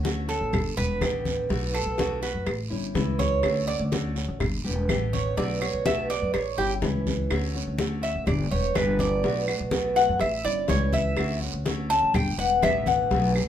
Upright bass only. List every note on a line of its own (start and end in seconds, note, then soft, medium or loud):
0.00 0.39 D2 medium
0.41 0.52 A1 medium
0.53 0.76 G1 medium
0.77 1.00 E1 medium
1.01 1.47 A1 medium
1.50 1.85 B1 loud
1.86 2.32 B1 medium
2.35 2.46 F#2 medium
2.46 2.70 A1 loud
2.71 2.94 G1 medium
2.95 3.41 C#2 loud
3.43 3.78 D2 medium
3.79 4.26 D2 medium
4.28 4.40 A1 medium
4.41 4.64 G1 medium
4.65 4.88 E1 medium
4.89 5.35 A1 medium
5.37 5.72 B1 medium
5.74 6.19 B1 medium
6.22 6.33 F#2 medium
6.34 6.57 A1 loud
6.58 6.81 G1 medium
6.82 7.28 C#2 loud
7.31 7.65 D2 medium
7.67 8.13 D2 medium
8.15 8.26 A1 medium
8.27 8.50 G1 loud
8.52 8.75 E1 medium
8.76 9.22 G1 medium
9.24 9.58 B1 medium
9.60 10.06 B1 medium
10.09 10.20 F#2 medium
10.21 10.44 A1 medium
10.45 10.68 G1 medium
10.69 11.15 C#2 loud
11.18 11.52 D2 medium
11.54 11.99 D2 medium
12.02 12.13 A1 medium
12.14 12.37 G1 loud
12.38 12.61 E1 medium
12.63 13.08 A1 loud
13.11 13.45 B1 loud